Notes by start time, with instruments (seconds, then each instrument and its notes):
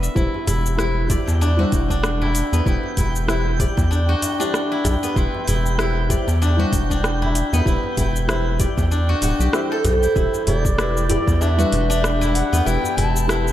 Already playing: guzheng B3 D4 E4 F#4 B4 D5
0.03 guzheng E5, cabasa
0.15 analog synth bass E1, synth stab E4 G4 C5 E5, guzheng E4, synth texture G5, kick, cabasa
0.34 djembe tone
0.47 analog synth bass E1, guzheng E4, open hi-hat, djembe bass, cabasa
0.66 cabasa
0.77 synth stab E4 G4 C5 E5, guzheng E4, cross-stick, cabasa
1.08 synth stab E4 G4 C5 E5, guzheng D5, kick, open hi-hat, djembe bass, cabasa
1.27 analog synth bass E2, djembe slap, cabasa
1.41 guzheng D4, djembe slap, cabasa
1.57 synth stab G3 E4 C5 E5, guzheng F#4
1.72 analog synth bass E1, kick, open hi-hat, djembe tone, cabasa
1.90 guzheng D4, kick, cabasa
2.04 cross-stick, cabasa
2.21 guzheng E4, djembe tone
2.35 open hi-hat, cabasa
2.53 analog synth bass E2, guzheng B3, djembe tone, cabasa
2.65 analog synth bass E1, synth stab E4 G4 C5 E5, guzheng E4, kick, cabasa
2.84 djembe tone
2.97 analog synth bass E1, guzheng E4, kick, open hi-hat, djembe bass, cabasa
3.16 cabasa
3.28 synth stab E4 G4 C5 E5, guzheng E4, cross-stick, cabasa
3.59 synth stab E4 G4 C5 E5, guzheng D5, kick, open hi-hat, djembe bass, cabasa
3.77 analog synth bass E2, kick, djembe slap, cabasa
3.91 guzheng D4, cabasa
4.08 guzheng F#4, djembe tone
4.22 open hi-hat, djembe tone, cabasa
4.40 guzheng D4, synth stab E4 G4 C5 E5, cabasa
4.54 cross-stick, cabasa
4.72 guzheng E4
4.84 analog synth bass B1, open hi-hat, djembe slap, djembe tone, djembe bass, cabasa
5.03 guzheng B3, cabasa
5.15 analog synth bass E1, synth stab E4 G4 E5 C6, guzheng E4, kick, cabasa
5.34 djembe tone
5.48 analog synth bass E1, guzheng E4, open hi-hat, djembe bass, cabasa
5.66 cabasa
5.78 synth stab E4 G4 C5 E5, guzheng E4, cross-stick, cabasa
6.09 synth stab E4 G4 C5 E5, guzheng D5, kick, open hi-hat, djembe bass, cabasa
6.28 analog synth bass E2, djembe slap, cabasa
6.42 guzheng D4, djembe slap, cabasa
6.57 synth stab G3 E4 C5 E5, guzheng F#4
6.72 analog synth bass E1, kick, open hi-hat, djembe tone, cabasa
6.90 guzheng D4, kick, cabasa
7.04 cross-stick, cabasa
7.22 guzheng E4, djembe tone
7.35 open hi-hat, cabasa
7.53 analog synth bass E2, guzheng B3, djembe tone, cabasa
7.65 analog synth bass E1, synth stab E4 G4 C5 E5, guzheng E4, kick, cabasa
7.83 djembe tone
7.97 analog synth bass E1, guzheng E4, kick, open hi-hat, djembe bass, cabasa
8.16 cabasa
8.27 synth stab E4 G4 C5 E5, guzheng E4, cross-stick, cabasa
8.59 synth stab E4 G4 C5 E5, guzheng D5, kick, open hi-hat, djembe bass, cabasa
8.78 analog synth bass E2, kick, djembe slap, cabasa
8.91 guzheng D4, cabasa
9.09 guzheng F#4, djembe slap, djembe tone
9.22 analog synth bass D1, guzheng F#4, open hi-hat, djembe tone, cabasa
9.40 analog synth bass B1, guzheng G4, cabasa
9.52 synth stab E4 G4 C5 E5, cross-stick, cabasa
9.72 guzheng A4
9.84 analog synth bass B1, bansuri C5, open hi-hat, djembe slap, djembe tone, djembe bass, cabasa
10.03 guzheng E4, cabasa
10.16 analog synth bass E1, synth stab E4 G4 E5, guzheng E4, synth texture G4, kick, cabasa
10.34 djembe tone, cabasa
10.46 analog synth bass E1, guzheng E4, bansuri D5, open hi-hat, djembe bass
10.65 kick, cabasa
10.78 synth stab E4 G4 B4 E5, guzheng E4, cross-stick, cabasa
10.97 cabasa
11.09 synth stab E4 G4 B4 E5, guzheng D5, open hi-hat, djembe bass
11.27 analog synth bass E2, kick, djembe slap, cabasa
11.41 guzheng D4, bansuri E5, djembe slap, cabasa
11.57 synth stab G3 E4 B4 E5, guzheng F#4, djembe tone, cabasa
11.72 analog synth bass E1, open hi-hat, djembe tone
11.90 guzheng D4, cabasa
12.04 cross-stick, cabasa
12.21 guzheng E4, djembe tone, cabasa
12.35 bansuri F#5, open hi-hat
12.53 analog synth bass E2, guzheng B3, djembe tone, cabasa
12.65 analog synth bass E1, synth stab E4 G4 B4 E5, guzheng E4, bansuri G5, cabasa
12.84 djembe tone, cabasa
12.97 analog synth bass E1, guzheng E4, bansuri A5, open hi-hat, djembe bass
13.16 cabasa
13.28 synth stab E4 G4 B4 E5, guzheng E4, cross-stick, cabasa
13.48 cabasa